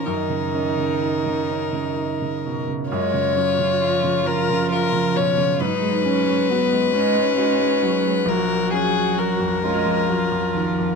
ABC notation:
X:1
M:6/8
L:1/16
Q:3/8=44
K:F#
V:1 name="Violin"
A12 | c6 A2 A2 c2 | B12 | A2 G2 A8 |]
V:2 name="Viola"
D12 | E12 | D2 C2 B,2 C6 | F6 E6 |]
V:3 name="Cello" clef=bass
D,12 | G,2 F,2 E,2 E,6 | F,6 G,2 G,2 F,2 | F,6 G,2 F,2 E,2 |]
V:4 name="Felt piano" clef=bass
F,, C, C C, D C, C C, D C, B,, C, | F,, C, C C, E C, C C, E C, B,, C, | G,, G, C G, F G, C G, F G, F, G, | A,,,2 C2 F E,, C E,, F E,, D,, E,, |]